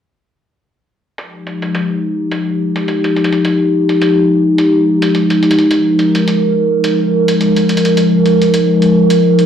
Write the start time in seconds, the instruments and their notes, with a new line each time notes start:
1.17 ambient pad F3 G#3 D#4 G4, closed hi-hat
1.47 closed hi-hat
1.62 closed hi-hat
1.75 closed hi-hat
2.31 closed hi-hat
2.76 closed hi-hat
2.88 closed hi-hat
3.04 closed hi-hat
3.16 closed hi-hat
3.24 closed hi-hat
3.32 closed hi-hat
3.45 closed hi-hat
3.89 closed hi-hat
4.02 closed hi-hat
4.58 closed hi-hat
5.02 closed hi-hat
5.15 closed hi-hat
5.30 closed hi-hat
5.43 closed hi-hat
5.51 closed hi-hat
5.59 closed hi-hat
5.71 ambient pad A#4, closed hi-hat
5.99 closed hi-hat
6.15 closed hi-hat
6.28 closed hi-hat
6.84 closed hi-hat
7.28 closed hi-hat
7.41 closed hi-hat
7.56 closed hi-hat
7.69 closed hi-hat
7.77 closed hi-hat
7.85 closed hi-hat
7.97 closed hi-hat
8.26 closed hi-hat
8.42 closed hi-hat
8.54 closed hi-hat
8.82 closed hi-hat
9.10 closed hi-hat
9.39 closed hi-hat